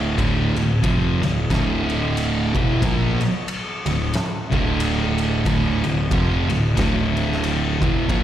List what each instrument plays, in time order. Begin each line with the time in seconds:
Already playing: picked electric bass D1, distorted electric guitar D2 A2 D3
0.18 picked electric bass D1, distorted electric guitar D2 A2 D3, kick, ride
0.55 picked electric bass D1, distorted electric guitar D2 A2, ride
0.83 picked electric bass F1, distorted electric guitar F2 C3 F3, kick, ride
1.21 picked electric bass D1, distorted electric guitar D2 A2, ride
1.49 picked electric bass D1, distorted electric guitar D2 A2 D3, kick, snare, ride
1.90 ride
2.17 ride
2.55 picked electric bass E1, distorted electric guitar E2 B2 E3, kick, ride
2.82 picked electric bass A#1, distorted electric guitar A#2 F3 A#3, kick, ride
3.21 ride
3.48 ride
3.86 picked electric bass D1, distorted electric guitar D2 A2, ride
4.14 snare, ride
4.50 picked electric bass D1, distorted electric guitar D2 A2 D3, kick, ride
4.80 ride
5.18 ride
5.45 picked electric bass D1, distorted electric guitar D2 A2 D3, kick, ride
5.84 picked electric bass D1, distorted electric guitar D2 A2, ride
6.11 picked electric bass F1, distorted electric guitar F2 C3 F3, kick, ride
6.49 picked electric bass D1, distorted electric guitar D2 A2, ride
6.75 picked electric bass D1, distorted electric guitar D2 A2 D3, kick, ride
6.79 snare
7.17 ride
7.32 snare
7.44 ride
7.80 picked electric bass E1, distorted electric guitar E2 B2 E3, kick, ride
8.08 picked electric bass A#1, distorted electric guitar A#2 F3 A#3, kick, ride